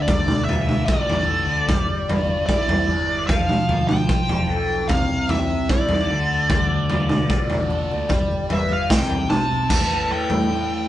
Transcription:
0.02 D5
0.07 D2 D3, kick, floor tom
0.26 D2, mid tom
0.44 F4 E5, high conga
0.49 floor tom
0.69 mid tom
0.85 A1 D5, kick
1.10 floor tom
1.25 A4, low conga
1.46 D2
1.66 G1 G3, kick, floor tom
1.87 high conga
2.08 B4, floor tom
2.27 high conga
2.46 B1 E4 D5, kick
2.68 floor tom, low conga
2.87 G1 D5, low conga
3.27 F1 F3 F5, kick, floor tom
3.49 mid tom
3.67 D2 F4, floor tom, high conga
3.87 G5, mid tom
4.07 C5, kick
4.29 F1, floor tom
4.48 B1 A4, low conga
4.88 C2 C3 F5, kick, floor tom
5.09 high conga
5.29 G4 E5, floor tom
5.50 high conga
5.69 E4 D5, kick
5.89 floor tom, low conga
6.10 D2 D3, low conga
6.50 D2 D3, kick, floor tom
6.71 D2
6.89 F4, floor tom, high conga
7.09 mid tom
7.28 A1 D5, kick
7.50 floor tom
7.69 A4, low conga
7.91 D2, high conga
8.08 G1 G3, kick, floor tom
8.31 high conga
8.49 B4 E5, floor tom
8.71 F5, high conga
8.89 C2 C3 G5, kick, snare
9.10 floor tom, high conga
9.29 B1 C5 A5, mid tom, low conga
9.52 low conga
9.68 A1 A2 E3 A3, kick, floor tom, crash
10.08 A2 E3 A3 G5, low conga
10.30 A2, floor tom, high conga
10.49 A2 E3 A3

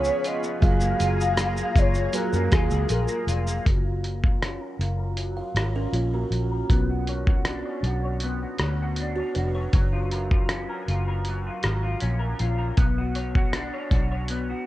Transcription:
Already playing: C#3 F3 B3 C#4 F4 G#4 C#5 F5 B5
0.04 B3, shaker
0.24 F4 D#5, closed hi-hat, shaker
0.43 B3, shaker
0.61 F#1 F#3 A#3 F4 G#4 F5 G#5 A#5, kick, closed hi-hat, shaker
0.80 A#3, shaker
1.00 F#1 F4, closed hi-hat, shaker
1.21 G#4, shaker
1.38 F4, cross-stick, closed hi-hat, shaker
1.57 A#3, shaker
1.76 F#1 F4 C#5, kick, closed hi-hat, shaker
1.94 A#3, shaker
2.13 F#3 A#3 F4 G#4 A#4, closed hi-hat, shaker
2.33 F#2 A#3, shaker
2.52 D#2 F4 G#4, kick, cross-stick, closed hi-hat, shaker
2.70 C#2 G#4, shaker
2.89 A#1 F4 A#4, closed hi-hat, shaker
3.08 A#3, shaker
3.27 F1 F4, closed hi-hat, shaker
3.47 A#3, shaker
3.66 F#1 F#3, kick, closed hi-hat
3.86 F4
4.04 A#4, closed hi-hat
4.23 F4, kick
4.43 C#4, cross-stick, closed hi-hat
4.61 A#4
4.80 F#1 F4, closed hi-hat
4.99 A#4
5.17 F#3, closed hi-hat
5.37 F4 F5
5.55 G#1 F4 A#4 C#5, cross-stick, closed hi-hat
5.76 C#4 F4 A#4
5.93 A#1 C#4 F4, closed hi-hat
6.14 A#3 F#4 A#4
6.31 A#1, closed hi-hat
6.51 A#4
6.70 B1 B3, kick, closed hi-hat
6.89 F#4
7.07 C#5, closed hi-hat
7.27 F#4, kick
7.45 D4, cross-stick, closed hi-hat
7.66 C#5
7.83 B1 F#4, closed hi-hat
8.05 C#5
8.20 B3, closed hi-hat
8.42 F#4
8.58 D2 C#5, cross-stick, closed hi-hat
8.82 F#4
8.96 D4, closed hi-hat
9.15 F#4 C#5
9.35 F1 D4 F#4 B4, closed hi-hat
9.55 C#5
9.73 F#1 F#3, kick, closed hi-hat
9.92 F4
10.11 A#4, closed hi-hat
10.31 F4, kick
10.49 C#4, cross-stick, closed hi-hat
10.69 A#4
10.88 F#1 F4, closed hi-hat
11.08 A#4
11.25 F#3, closed hi-hat
11.47 F4
11.63 G#1 A#4, cross-stick, closed hi-hat
11.83 F4
12.01 A#1 C#4, closed hi-hat
12.20 A#4
12.40 A#1 F4, closed hi-hat
12.58 A#4
12.77 B1 B3, kick, closed hi-hat
12.98 F#4
13.15 C#5, closed hi-hat
13.35 F#4, kick
13.53 D4, cross-stick, closed hi-hat
13.73 C#5
13.91 B1 F#4, kick, closed hi-hat
14.11 C#5
14.28 B3, closed hi-hat
14.50 F#4

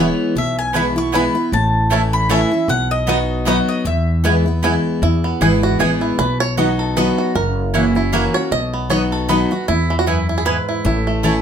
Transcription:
Already playing: E3 G#3
0.00 B3 E4 C#5
0.35 B1 B2 E5
0.59 G#5
0.73 E3 G#3 B3 E4 B4 G#5 B5
0.96 B3 E4 C#6
1.12 E3 G#3 B3 E4 B4 G#5 B5
1.35 B3 E4
1.52 A1 A2 A5
1.90 E3 A3 C#4 E4 C#5 A5
2.13 B5
2.29 E3 A3 C#4 E4 C#5 E5 A5
2.51 C#4 E4
2.68 B1 B2 F#5
2.91 D#5
3.07 F#3 B3 D#4 F#4 D#5 B5
3.45 F#3 B3 D#4 F#4 D#5 F#5 B5
3.69 D#5
3.85 E2 E5
4.24 E3 G#3 B3 E4 B4 G#5
4.46 B3 E4
4.63 E3 G#3 B3 E4 B4 G#5
5.02 E2 E4
5.24 B3
5.41 G#1 E3 G#3 B3 E4 G#4 B4 G#5
5.63 F#4
5.79 A1 E3 G#3 B3 E4 G#4 B4 G#5
6.01 E4
6.18 B1 B2 B4
6.40 C#5
6.57 F#3 B3 D#4 F#4 D#5 B5
6.79 A4
6.97 F#3 B3 D#4 F#4 B4 D#5 B5
7.18 F#4
7.35 F#1 F#2 A#4
7.74 E3 A#3 C#4 E4 F#4 C#5 F#5
7.95 C#4 E4 F#4
8.12 E3 A#3 C#4 E4 F#4 C#5 F#5
8.34 C#4 F#4 C#5
8.51 B1 B2 D#5
8.74 B3
8.90 F#3 B3 D#4 F#4 C#5 D#5 B5
9.12 A4
9.28 F#3 B3 D#4 F#4 B4 D#5 B5
9.51 D#4 F#4
9.68 E2 E4
9.90 E3
9.99 F#4
10.06 F#2 B3 E4 B4 G#5
10.29 E4
10.38 G#4
10.45 G#2 B3 E4 B4 G#5
10.69 E4
10.85 A1 A2 E4
11.07 A3
11.23 E3 A3 C#4 E4 C#5 A5

